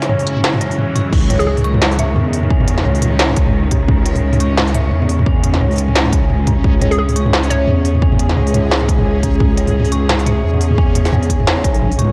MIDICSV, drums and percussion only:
0, 0, Header, 1, 2, 480
1, 0, Start_track
1, 0, Key_signature, 4, "minor"
1, 0, Tempo, 344828
1, 1565, Time_signature, 4, 2, 24, 8
1, 16874, End_track
2, 0, Start_track
2, 0, Title_t, "Drums"
2, 27, Note_on_c, 9, 38, 36
2, 27, Note_on_c, 9, 46, 39
2, 129, Note_on_c, 9, 45, 84
2, 166, Note_off_c, 9, 38, 0
2, 166, Note_off_c, 9, 46, 0
2, 267, Note_on_c, 9, 46, 38
2, 269, Note_off_c, 9, 45, 0
2, 371, Note_on_c, 9, 42, 69
2, 406, Note_off_c, 9, 46, 0
2, 510, Note_off_c, 9, 42, 0
2, 510, Note_on_c, 9, 45, 57
2, 610, Note_on_c, 9, 38, 117
2, 649, Note_off_c, 9, 45, 0
2, 747, Note_on_c, 9, 45, 87
2, 749, Note_off_c, 9, 38, 0
2, 848, Note_on_c, 9, 42, 81
2, 887, Note_off_c, 9, 45, 0
2, 988, Note_off_c, 9, 42, 0
2, 990, Note_on_c, 9, 46, 39
2, 1092, Note_on_c, 9, 45, 57
2, 1129, Note_off_c, 9, 46, 0
2, 1231, Note_off_c, 9, 45, 0
2, 1331, Note_on_c, 9, 42, 68
2, 1331, Note_on_c, 9, 45, 84
2, 1331, Note_on_c, 9, 46, 38
2, 1470, Note_off_c, 9, 42, 0
2, 1470, Note_off_c, 9, 45, 0
2, 1470, Note_off_c, 9, 46, 0
2, 1567, Note_on_c, 9, 36, 120
2, 1569, Note_on_c, 9, 45, 55
2, 1569, Note_on_c, 9, 49, 79
2, 1706, Note_off_c, 9, 36, 0
2, 1709, Note_off_c, 9, 45, 0
2, 1709, Note_off_c, 9, 49, 0
2, 1811, Note_on_c, 9, 42, 79
2, 1811, Note_on_c, 9, 45, 81
2, 1949, Note_on_c, 9, 46, 38
2, 1950, Note_off_c, 9, 42, 0
2, 1950, Note_off_c, 9, 45, 0
2, 2088, Note_off_c, 9, 46, 0
2, 2188, Note_on_c, 9, 45, 55
2, 2188, Note_on_c, 9, 46, 38
2, 2289, Note_on_c, 9, 42, 72
2, 2328, Note_off_c, 9, 45, 0
2, 2328, Note_off_c, 9, 46, 0
2, 2425, Note_on_c, 9, 45, 84
2, 2428, Note_off_c, 9, 42, 0
2, 2529, Note_on_c, 9, 38, 118
2, 2565, Note_off_c, 9, 45, 0
2, 2666, Note_on_c, 9, 46, 38
2, 2668, Note_off_c, 9, 38, 0
2, 2767, Note_on_c, 9, 42, 82
2, 2767, Note_on_c, 9, 45, 57
2, 2805, Note_off_c, 9, 46, 0
2, 2906, Note_off_c, 9, 42, 0
2, 2906, Note_off_c, 9, 45, 0
2, 3006, Note_on_c, 9, 45, 85
2, 3145, Note_off_c, 9, 45, 0
2, 3246, Note_on_c, 9, 46, 69
2, 3385, Note_off_c, 9, 46, 0
2, 3385, Note_on_c, 9, 45, 56
2, 3486, Note_on_c, 9, 36, 126
2, 3524, Note_off_c, 9, 45, 0
2, 3625, Note_off_c, 9, 36, 0
2, 3625, Note_on_c, 9, 45, 82
2, 3726, Note_on_c, 9, 42, 81
2, 3764, Note_off_c, 9, 45, 0
2, 3865, Note_off_c, 9, 42, 0
2, 3865, Note_on_c, 9, 38, 39
2, 3965, Note_on_c, 9, 45, 54
2, 4004, Note_off_c, 9, 38, 0
2, 4103, Note_on_c, 9, 46, 37
2, 4104, Note_off_c, 9, 45, 0
2, 4203, Note_on_c, 9, 42, 71
2, 4203, Note_on_c, 9, 45, 77
2, 4242, Note_off_c, 9, 46, 0
2, 4250, Note_off_c, 9, 45, 0
2, 4250, Note_on_c, 9, 45, 66
2, 4285, Note_off_c, 9, 45, 0
2, 4285, Note_on_c, 9, 45, 54
2, 4342, Note_off_c, 9, 42, 0
2, 4425, Note_off_c, 9, 45, 0
2, 4443, Note_on_c, 9, 38, 125
2, 4582, Note_off_c, 9, 38, 0
2, 4583, Note_on_c, 9, 45, 55
2, 4683, Note_on_c, 9, 42, 85
2, 4687, Note_on_c, 9, 36, 112
2, 4722, Note_off_c, 9, 45, 0
2, 4822, Note_on_c, 9, 45, 81
2, 4823, Note_off_c, 9, 42, 0
2, 4826, Note_off_c, 9, 36, 0
2, 4962, Note_off_c, 9, 45, 0
2, 5166, Note_on_c, 9, 36, 68
2, 5167, Note_on_c, 9, 42, 69
2, 5167, Note_on_c, 9, 45, 54
2, 5306, Note_off_c, 9, 36, 0
2, 5306, Note_off_c, 9, 42, 0
2, 5306, Note_off_c, 9, 45, 0
2, 5404, Note_on_c, 9, 45, 77
2, 5407, Note_on_c, 9, 36, 123
2, 5544, Note_off_c, 9, 45, 0
2, 5546, Note_off_c, 9, 36, 0
2, 5645, Note_on_c, 9, 42, 82
2, 5783, Note_on_c, 9, 45, 54
2, 5783, Note_on_c, 9, 46, 36
2, 5784, Note_off_c, 9, 42, 0
2, 5922, Note_off_c, 9, 45, 0
2, 5922, Note_off_c, 9, 46, 0
2, 6025, Note_on_c, 9, 45, 77
2, 6025, Note_on_c, 9, 46, 35
2, 6126, Note_on_c, 9, 42, 69
2, 6164, Note_off_c, 9, 45, 0
2, 6164, Note_off_c, 9, 46, 0
2, 6265, Note_off_c, 9, 42, 0
2, 6367, Note_on_c, 9, 38, 127
2, 6367, Note_on_c, 9, 45, 52
2, 6505, Note_on_c, 9, 46, 37
2, 6506, Note_off_c, 9, 38, 0
2, 6506, Note_off_c, 9, 45, 0
2, 6604, Note_on_c, 9, 42, 82
2, 6604, Note_on_c, 9, 45, 76
2, 6645, Note_off_c, 9, 46, 0
2, 6743, Note_off_c, 9, 42, 0
2, 6743, Note_off_c, 9, 45, 0
2, 6985, Note_on_c, 9, 45, 52
2, 7087, Note_on_c, 9, 46, 64
2, 7125, Note_off_c, 9, 45, 0
2, 7225, Note_on_c, 9, 45, 78
2, 7226, Note_off_c, 9, 46, 0
2, 7326, Note_on_c, 9, 36, 122
2, 7365, Note_off_c, 9, 45, 0
2, 7466, Note_off_c, 9, 36, 0
2, 7567, Note_on_c, 9, 42, 79
2, 7567, Note_on_c, 9, 45, 50
2, 7706, Note_off_c, 9, 42, 0
2, 7706, Note_off_c, 9, 45, 0
2, 7707, Note_on_c, 9, 38, 39
2, 7809, Note_on_c, 9, 45, 78
2, 7847, Note_off_c, 9, 38, 0
2, 7948, Note_off_c, 9, 45, 0
2, 7948, Note_on_c, 9, 46, 16
2, 7970, Note_off_c, 9, 46, 0
2, 7970, Note_on_c, 9, 46, 22
2, 8016, Note_off_c, 9, 46, 0
2, 8016, Note_on_c, 9, 46, 29
2, 8049, Note_on_c, 9, 42, 67
2, 8155, Note_off_c, 9, 46, 0
2, 8188, Note_on_c, 9, 45, 51
2, 8189, Note_off_c, 9, 42, 0
2, 8289, Note_on_c, 9, 38, 123
2, 8327, Note_off_c, 9, 45, 0
2, 8426, Note_on_c, 9, 45, 79
2, 8429, Note_off_c, 9, 38, 0
2, 8525, Note_on_c, 9, 36, 113
2, 8529, Note_on_c, 9, 42, 80
2, 8566, Note_off_c, 9, 45, 0
2, 8664, Note_off_c, 9, 36, 0
2, 8669, Note_off_c, 9, 42, 0
2, 8767, Note_on_c, 9, 45, 53
2, 8906, Note_off_c, 9, 45, 0
2, 9006, Note_on_c, 9, 36, 64
2, 9007, Note_on_c, 9, 42, 66
2, 9007, Note_on_c, 9, 45, 78
2, 9145, Note_off_c, 9, 36, 0
2, 9146, Note_off_c, 9, 42, 0
2, 9146, Note_off_c, 9, 45, 0
2, 9245, Note_on_c, 9, 36, 120
2, 9247, Note_on_c, 9, 45, 51
2, 9385, Note_off_c, 9, 36, 0
2, 9386, Note_off_c, 9, 45, 0
2, 9486, Note_on_c, 9, 42, 73
2, 9486, Note_on_c, 9, 45, 73
2, 9626, Note_off_c, 9, 42, 0
2, 9626, Note_off_c, 9, 45, 0
2, 9626, Note_on_c, 9, 46, 38
2, 9765, Note_off_c, 9, 46, 0
2, 9867, Note_on_c, 9, 45, 50
2, 9867, Note_on_c, 9, 46, 38
2, 9967, Note_on_c, 9, 42, 67
2, 10006, Note_off_c, 9, 45, 0
2, 10006, Note_off_c, 9, 46, 0
2, 10106, Note_off_c, 9, 42, 0
2, 10106, Note_on_c, 9, 45, 78
2, 10208, Note_on_c, 9, 38, 121
2, 10246, Note_off_c, 9, 45, 0
2, 10347, Note_off_c, 9, 38, 0
2, 10347, Note_on_c, 9, 46, 37
2, 10450, Note_on_c, 9, 42, 77
2, 10450, Note_on_c, 9, 45, 52
2, 10487, Note_off_c, 9, 46, 0
2, 10589, Note_off_c, 9, 42, 0
2, 10589, Note_off_c, 9, 45, 0
2, 10687, Note_on_c, 9, 45, 76
2, 10827, Note_off_c, 9, 45, 0
2, 10928, Note_on_c, 9, 46, 67
2, 11064, Note_on_c, 9, 45, 52
2, 11067, Note_off_c, 9, 46, 0
2, 11166, Note_on_c, 9, 36, 116
2, 11204, Note_off_c, 9, 45, 0
2, 11306, Note_off_c, 9, 36, 0
2, 11306, Note_on_c, 9, 45, 79
2, 11407, Note_on_c, 9, 42, 75
2, 11445, Note_off_c, 9, 45, 0
2, 11546, Note_off_c, 9, 42, 0
2, 11546, Note_on_c, 9, 38, 36
2, 11649, Note_on_c, 9, 45, 54
2, 11685, Note_off_c, 9, 38, 0
2, 11788, Note_off_c, 9, 45, 0
2, 11788, Note_on_c, 9, 46, 39
2, 11891, Note_on_c, 9, 42, 66
2, 11891, Note_on_c, 9, 45, 81
2, 11928, Note_off_c, 9, 46, 0
2, 12031, Note_off_c, 9, 42, 0
2, 12031, Note_off_c, 9, 45, 0
2, 12130, Note_on_c, 9, 38, 120
2, 12269, Note_off_c, 9, 38, 0
2, 12271, Note_on_c, 9, 45, 55
2, 12367, Note_on_c, 9, 36, 101
2, 12373, Note_on_c, 9, 42, 78
2, 12410, Note_off_c, 9, 45, 0
2, 12507, Note_off_c, 9, 36, 0
2, 12509, Note_on_c, 9, 45, 81
2, 12512, Note_off_c, 9, 42, 0
2, 12648, Note_off_c, 9, 45, 0
2, 12848, Note_on_c, 9, 36, 61
2, 12850, Note_on_c, 9, 42, 66
2, 12850, Note_on_c, 9, 45, 53
2, 12987, Note_off_c, 9, 36, 0
2, 12990, Note_off_c, 9, 42, 0
2, 12990, Note_off_c, 9, 45, 0
2, 13088, Note_on_c, 9, 36, 112
2, 13090, Note_on_c, 9, 45, 84
2, 13228, Note_off_c, 9, 36, 0
2, 13229, Note_off_c, 9, 45, 0
2, 13328, Note_on_c, 9, 42, 77
2, 13465, Note_on_c, 9, 45, 56
2, 13465, Note_on_c, 9, 46, 40
2, 13467, Note_off_c, 9, 42, 0
2, 13605, Note_off_c, 9, 45, 0
2, 13605, Note_off_c, 9, 46, 0
2, 13637, Note_on_c, 9, 45, 84
2, 13706, Note_on_c, 9, 46, 39
2, 13776, Note_off_c, 9, 45, 0
2, 13808, Note_on_c, 9, 42, 65
2, 13845, Note_off_c, 9, 46, 0
2, 13947, Note_off_c, 9, 42, 0
2, 14050, Note_on_c, 9, 38, 115
2, 14050, Note_on_c, 9, 45, 54
2, 14187, Note_on_c, 9, 46, 40
2, 14189, Note_off_c, 9, 38, 0
2, 14189, Note_off_c, 9, 45, 0
2, 14288, Note_on_c, 9, 42, 78
2, 14288, Note_on_c, 9, 45, 85
2, 14326, Note_off_c, 9, 46, 0
2, 14427, Note_off_c, 9, 42, 0
2, 14427, Note_off_c, 9, 45, 0
2, 14666, Note_on_c, 9, 45, 56
2, 14766, Note_on_c, 9, 46, 72
2, 14805, Note_off_c, 9, 45, 0
2, 14905, Note_on_c, 9, 45, 82
2, 14906, Note_off_c, 9, 46, 0
2, 15006, Note_on_c, 9, 36, 113
2, 15044, Note_off_c, 9, 45, 0
2, 15145, Note_off_c, 9, 36, 0
2, 15245, Note_on_c, 9, 42, 82
2, 15245, Note_on_c, 9, 45, 56
2, 15384, Note_off_c, 9, 42, 0
2, 15384, Note_off_c, 9, 45, 0
2, 15384, Note_on_c, 9, 38, 37
2, 15384, Note_on_c, 9, 46, 39
2, 15485, Note_on_c, 9, 45, 86
2, 15523, Note_off_c, 9, 38, 0
2, 15523, Note_off_c, 9, 46, 0
2, 15624, Note_off_c, 9, 45, 0
2, 15626, Note_on_c, 9, 46, 39
2, 15725, Note_on_c, 9, 36, 59
2, 15728, Note_on_c, 9, 42, 68
2, 15765, Note_off_c, 9, 46, 0
2, 15864, Note_off_c, 9, 36, 0
2, 15867, Note_off_c, 9, 42, 0
2, 15868, Note_on_c, 9, 45, 56
2, 15969, Note_on_c, 9, 38, 117
2, 16007, Note_off_c, 9, 45, 0
2, 16108, Note_off_c, 9, 38, 0
2, 16205, Note_on_c, 9, 36, 106
2, 16208, Note_on_c, 9, 42, 83
2, 16344, Note_off_c, 9, 36, 0
2, 16347, Note_on_c, 9, 46, 40
2, 16348, Note_off_c, 9, 42, 0
2, 16448, Note_on_c, 9, 45, 58
2, 16487, Note_off_c, 9, 46, 0
2, 16587, Note_off_c, 9, 45, 0
2, 16587, Note_on_c, 9, 46, 39
2, 16688, Note_on_c, 9, 42, 67
2, 16688, Note_on_c, 9, 45, 83
2, 16726, Note_off_c, 9, 46, 0
2, 16728, Note_off_c, 9, 45, 0
2, 16728, Note_on_c, 9, 45, 66
2, 16767, Note_off_c, 9, 45, 0
2, 16767, Note_on_c, 9, 45, 56
2, 16805, Note_off_c, 9, 45, 0
2, 16805, Note_on_c, 9, 45, 44
2, 16827, Note_off_c, 9, 42, 0
2, 16874, Note_off_c, 9, 45, 0
2, 16874, End_track
0, 0, End_of_file